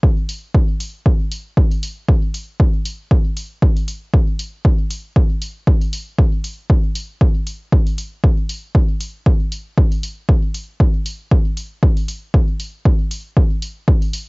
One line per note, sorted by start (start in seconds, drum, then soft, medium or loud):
0.03 kick loud
0.29 open hi-hat medium
0.54 kick loud
0.80 open hi-hat medium
1.06 kick loud
1.31 open hi-hat medium
1.57 kick loud
1.71 open hi-hat soft
1.83 open hi-hat medium
2.08 kick loud
2.34 open hi-hat medium
2.60 kick loud
2.85 open hi-hat medium
3.11 kick loud
3.37 open hi-hat medium
3.62 kick loud
3.77 open hi-hat soft
3.88 open hi-hat medium
4.13 kick loud
4.39 open hi-hat medium
4.65 kick loud
4.90 open hi-hat medium
5.16 kick loud
5.42 open hi-hat medium
5.67 kick loud
5.82 open hi-hat soft
5.93 open hi-hat medium
6.19 kick loud
6.44 open hi-hat medium
6.70 kick loud
6.96 open hi-hat medium
7.21 kick loud
7.47 open hi-hat medium
7.72 kick loud
7.87 open hi-hat soft
7.98 open hi-hat medium
8.24 kick loud
8.49 open hi-hat medium
8.75 kick loud
9.01 open hi-hat medium
9.26 kick loud
9.52 open hi-hat medium
9.78 kick loud
9.92 open hi-hat soft
10.03 open hi-hat medium
10.29 kick loud
10.55 open hi-hat medium
10.80 kick loud
11.06 open hi-hat medium
11.31 kick loud
11.57 open hi-hat medium
11.83 kick loud
11.97 open hi-hat soft
12.08 open hi-hat medium
12.34 kick loud
12.60 open hi-hat medium
12.85 kick loud
13.11 open hi-hat medium
13.37 kick loud
13.62 open hi-hat medium
13.88 kick loud
14.02 open hi-hat soft
14.13 open hi-hat medium